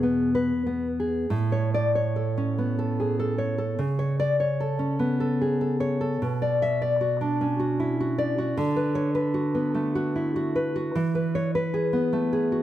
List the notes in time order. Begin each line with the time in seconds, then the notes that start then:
Already playing: E2 B2 G#4
0.03 B3
0.35 B4
0.66 B3
1.00 G#4
1.30 A2
1.52 C#5
1.74 D5
1.95 C#5
2.16 A4
2.37 C#4
2.58 B3
2.79 A4
3.00 G#4
3.19 A4
3.38 C#5
3.58 A4
3.79 C#3
3.99 C#5
4.20 D5
4.40 C#5
4.60 A4
4.79 C#4
4.99 B3
5.20 A4
5.41 G#4
5.61 A4
5.80 C#5
6.01 A4
6.22 B2
6.42 D5
6.62 E5
6.82 D5
7.01 F#4
7.21 D4
7.41 C#4
7.59 F#4
7.80 E4
8.00 F#4
8.18 D5
8.38 F#4
8.57 D3
8.76 B4
8.95 C#5
9.15 B4
9.34 F#4
9.55 B3
9.75 A3
9.95 F#4
10.16 E4
10.36 F#4
10.56 B4
10.76 F#4
10.95 E3
11.15 B4
11.35 C#5
11.55 B4
11.74 G#4
11.93 B3
12.13 A3
12.33 G#4
12.52 F#4